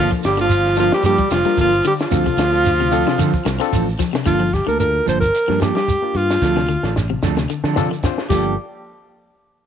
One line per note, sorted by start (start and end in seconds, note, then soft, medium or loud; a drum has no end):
0.00 0.11 F3 medium
0.00 0.11 A#3 medium
0.00 0.30 A#3 medium
0.00 0.10 D4 medium
0.00 0.30 D4 medium
0.00 0.31 F4 medium
0.00 0.10 A4 medium
0.00 0.31 A4 medium
0.11 0.32 F3 medium
0.11 muted clean electric guitar stroke soft
0.11 kick medium
0.11 shekere soft
0.24 0.90 G1 loud
0.24 0.39 G3 medium
0.24 0.38 G4 medium
0.24 muted clean electric guitar stroke soft
0.24 snare medium
0.24 ride bell medium
0.24 shekere medium
0.37 0.58 D3 medium
0.37 0.76 F3 medium
0.37 0.49 A#3 soft
0.37 0.49 D4 medium
0.37 0.76 F4 loud
0.37 0.49 A4 medium
0.37 ride bell medium
0.37 shekere soft
0.50 muted clean electric guitar stroke soft
0.50 ride bell medium
0.50 shekere medium
0.65 snare soft
0.65 shekere soft
0.76 0.92 F3 medium
0.76 1.04 A#3 medium
0.76 0.91 A#3 medium
0.76 1.04 D4 medium
0.76 0.91 D4 medium
0.76 1.05 F4 medium
0.76 0.92 F4 loud
0.76 0.90 A4 medium
0.76 1.05 C5 medium
0.76 open hi-hat medium
0.76 shekere medium
0.91 1.05 G3 medium
0.91 1.04 G4 loud
0.91 muted clean electric guitar stroke soft
0.91 snare medium
0.91 shekere soft
1.03 1.17 G2 medium
1.03 1.18 F3 medium
1.03 1.31 G3 loud
1.03 1.18 A#3 medium
1.03 1.17 D4 medium
1.03 1.30 G4 loud
1.03 1.17 A4 medium
1.03 ride bell medium
1.03 shekere loud
1.18 1.28 G3 medium
1.18 muted clean electric guitar stroke soft
1.18 muted fingered electric bass stroke soft
1.18 kick medium
1.18 shekere soft
1.30 1.43 F1 medium
1.30 1.57 F3 medium
1.30 1.42 G3 medium
1.30 1.56 F4 medium
1.30 muted clean electric guitar stroke soft
1.30 snare medium
1.30 ride bell medium
1.30 shekere medium
1.44 1.66 G3 medium
1.44 1.73 A#3 medium
1.44 1.73 D4 medium
1.44 1.73 F4 medium
1.44 1.73 A#4 medium
1.44 snare soft
1.44 shekere soft
1.57 1.80 G1 medium
1.57 1.72 F3 medium
1.57 1.84 F3 medium
1.57 1.71 A#3 medium
1.57 1.71 D4 medium
1.57 1.84 F4 loud
1.57 1.71 A4 medium
1.57 kick medium
1.57 ride bell medium
1.57 shekere medium
1.72 muted clean electric guitar stroke soft
1.72 shekere soft
1.84 2.05 D3 medium
1.84 1.93 G3 medium
1.84 1.93 G4 loud
1.84 muted clean electric guitar stroke soft
1.84 ride bell medium
1.84 shekere medium
1.99 3.70 F3 medium
1.99 3.70 F4 loud
1.99 snare medium
1.99 shekere soft
2.11 2.24 D2 medium
2.11 2.26 F3 medium
2.11 2.25 C4 medium
2.11 2.44 C4 medium
2.11 2.25 D4 medium
2.11 2.45 D4 medium
2.11 2.45 F4 medium
2.11 2.24 A4 medium
2.11 2.45 A4 medium
2.11 kick medium
2.11 ride bell medium
2.11 shekere medium
2.26 2.35 C3 medium
2.26 muted clean electric guitar stroke soft
2.26 kick medium
2.26 shekere soft
2.37 3.03 D2 loud
2.37 2.59 D3 medium
2.37 muted clean electric guitar stroke soft
2.37 snare medium
2.37 ride bell medium
2.37 shekere medium
2.52 2.64 C4 soft
2.52 2.64 D4 medium
2.52 2.64 A4 medium
2.52 shekere soft
2.64 muted clean electric guitar stroke medium
2.64 snare soft
2.64 ride bell medium
2.64 shekere medium
2.80 3.01 C3 medium
2.80 shekere soft
2.91 3.06 F3 medium
2.91 3.19 C4 loud
2.91 3.06 C4 medium
2.91 3.19 D4 medium
2.91 3.06 D4 medium
2.91 3.19 F4 medium
2.91 3.20 A4 loud
2.91 3.05 A4 medium
2.91 open hi-hat medium
2.91 shekere medium
3.07 3.16 C3 medium
3.07 muted clean electric guitar stroke medium
3.07 snare medium
3.07 shekere soft
3.18 3.31 D3 medium
3.18 3.40 D3 medium
3.18 3.33 F3 loud
3.18 3.33 C4 loud
3.18 3.33 D4 medium
3.18 3.32 A4 loud
3.18 ride bell medium
3.18 shekere medium
3.34 muted clean electric guitar stroke soft
3.34 muted fingered electric bass stroke soft
3.34 kick medium
3.34 shekere soft
3.45 3.58 C2 medium
3.45 3.57 C3 medium
3.45 muted clean electric guitar stroke soft
3.45 snare medium
3.45 ride bell medium
3.45 shekere medium
3.60 3.87 C4 loud
3.60 3.88 D4 medium
3.60 3.88 F4 medium
3.60 3.88 A4 loud
3.60 muted clean electric guitar stroke medium
3.60 snare soft
3.60 ride bell medium
3.60 shekere soft
3.72 3.95 A1 medium
3.72 3.87 F3 medium
3.72 3.86 C4 medium
3.72 3.86 D4 medium
3.72 3.86 A4 medium
3.72 kick medium
3.72 ride bell medium
3.72 shekere medium
3.87 muted clean electric guitar stroke medium
3.87 shekere soft
3.99 4.11 F3 medium
3.99 muted clean electric guitar stroke soft
3.99 kick medium
3.99 snare soft
3.99 ride bell medium
3.99 shekere medium
4.13 4.23 C3 medium
4.13 snare medium
4.13 ride bell medium
4.13 shekere soft
4.25 4.60 G1 medium
4.25 4.37 D3 medium
4.25 4.43 F3 medium
4.25 4.43 A#3 medium
4.25 4.48 A#3 medium
4.25 4.43 D4 medium
4.25 4.48 D4 medium
4.25 4.55 F4 loud
4.25 4.49 F4 medium
4.25 4.43 A4 medium
4.25 4.49 A4 medium
4.25 kick medium
4.25 closed hi-hat medium
4.25 shekere medium
4.40 4.61 F3 medium
4.53 4.67 G4 medium
4.53 kick medium
4.53 snare soft
4.53 closed hi-hat medium
4.53 shekere soft
4.66 4.99 D2 medium
4.66 4.88 D3 medium
4.66 4.80 A#3 soft
4.66 4.78 D4 medium
4.66 4.79 A4 medium
4.66 4.79 A#4 medium
4.66 shekere soft
4.79 5.24 A#3 medium
4.79 5.25 D4 medium
4.79 5.25 F4 medium
4.79 5.25 A4 medium
4.79 5.05 A#4 medium
4.79 muted clean electric guitar stroke soft
4.79 closed hi-hat medium
4.79 shekere medium
4.95 muted clean electric guitar stroke soft
5.06 5.29 G1 medium
5.06 5.21 F3 medium
5.06 5.21 A#3 medium
5.06 5.20 D4 medium
5.06 5.20 A4 medium
5.06 5.20 C5 medium
5.06 closed hi-hat medium
5.06 shekere medium
5.20 5.57 A#4 loud
5.20 muted clean electric guitar stroke soft
5.20 kick medium
5.20 closed hi-hat medium
5.20 shekere medium
5.34 muted clean electric guitar stroke soft
5.34 closed hi-hat medium
5.34 shekere medium
5.48 5.71 G2 medium
5.48 5.58 F3 medium
5.48 5.59 F3 medium
5.48 5.60 A#3 medium
5.48 5.60 D4 medium
5.48 5.60 A4 medium
5.48 snare soft
5.60 5.75 F3 medium
5.60 5.72 G3 medium
5.60 5.75 A#3 medium
5.60 5.74 D4 medium
5.60 5.75 G4 medium
5.60 5.74 A4 medium
5.60 snare medium
5.60 closed hi-hat medium
5.60 shekere medium
5.75 5.96 G3 medium
5.75 6.18 G4 medium
5.75 muted clean electric guitar stroke soft
5.75 snare medium
5.75 shekere soft
5.88 muted clean electric guitar stroke soft
5.88 kick medium
5.88 closed hi-hat medium
5.88 shekere medium
6.02 6.42 A#3 medium
6.02 6.42 D4 medium
6.02 6.42 F4 medium
6.02 6.43 G4 medium
6.15 6.37 G2 medium
6.15 6.97 F4 medium
6.15 muted clean electric guitar stroke soft
6.15 closed hi-hat medium
6.15 shekere soft
6.30 muted clean electric guitar stroke soft
6.30 snare medium
6.30 shekere medium
6.42 6.76 D2 medium
6.42 6.59 F3 medium
6.42 6.59 C4 medium
6.42 6.59 D4 medium
6.42 6.59 A4 medium
6.42 kick medium
6.42 snare medium
6.42 shekere medium
6.56 6.66 C3 medium
6.56 snare soft
6.69 6.89 D3 medium
6.69 shekere soft
6.83 7.15 A1 medium
6.83 6.95 C4 soft
6.83 6.95 D4 medium
6.83 6.95 A4 medium
6.83 snare soft
6.83 shekere soft
6.96 snare medium
6.96 shekere medium
7.10 7.31 C3 medium
7.10 muted clean electric guitar stroke soft
7.23 7.45 D2 medium
7.23 7.37 F3 medium
7.23 7.37 C4 medium
7.23 7.37 D4 loud
7.23 7.36 A4 loud
7.23 snare medium
7.23 shekere medium
7.37 7.47 C3 medium
7.37 muted clean electric guitar stroke soft
7.37 snare medium
7.37 shekere medium
7.50 7.71 D3 medium
7.50 muted clean electric guitar stroke soft
7.50 shekere medium
7.64 7.86 D3 medium
7.64 7.75 F3 medium
7.64 7.76 C4 medium
7.64 7.76 D4 medium
7.64 7.76 A4 medium
7.64 snare medium
7.76 7.88 C3 medium
7.76 7.91 F3 medium
7.76 7.88 C4 medium
7.76 7.90 C4 medium
7.76 7.88 D4 medium
7.76 7.90 D4 medium
7.76 7.89 F4 medium
7.76 7.89 A4 loud
7.76 7.90 A4 medium
7.76 snare medium
7.76 shekere medium
7.91 8.12 D3 medium
7.91 muted clean electric guitar stroke medium
7.91 shekere soft
8.03 8.21 C4 medium
8.03 8.21 D4 medium
8.03 8.21 F4 medium
8.03 8.22 C5 loud
8.03 muted clean electric guitar stroke soft
8.03 kick medium
8.03 snare medium
8.03 shekere medium
8.18 snare medium
8.29 8.55 G1 medium
8.29 8.46 G2 medium
8.29 8.52 F3 medium
8.29 8.56 G3 medium
8.29 8.53 A#3 medium
8.29 8.56 A#3 medium
8.29 8.53 D4 medium
8.29 8.56 D4 medium
8.29 8.56 F4 medium
8.29 8.55 G4 medium
8.29 8.53 A4 medium
8.29 8.56 A4 medium
8.29 kick medium
8.29 crash medium
8.29 shekere medium